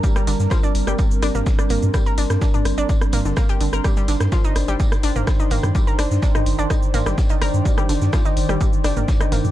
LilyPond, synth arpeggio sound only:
\new Staff \with { instrumentName = "Synth arpeggio sound" } { \time 4/4 \key c \dorian \tempo 4 = 126 g16 g16 d16 r16 f16 d'16 r16 g16 g16 r16 d'16 bes16 r16 d'16 bes16 r16 | g16 bes'16 d'16 r16 d'16 d'16 r16 d'16 d'16 r16 bes16 d16 bes16 g'16 d16 bes'16 | g16 g16 d16 r16 f16 ees'16 r16 g16 g16 r16 d'16 bes16 r16 ees'16 bes16 r16 | g16 bes'16 d'16 r16 d'16 ees'16 r16 d'16 ees'16 r16 bes16 g16 r16 ees'16 bes'16 r16 |
g16 g16 d16 r16 f16 ees'16 r16 g16 g16 r16 d'16 bes16 r16 ees'16 bes16 r16 | }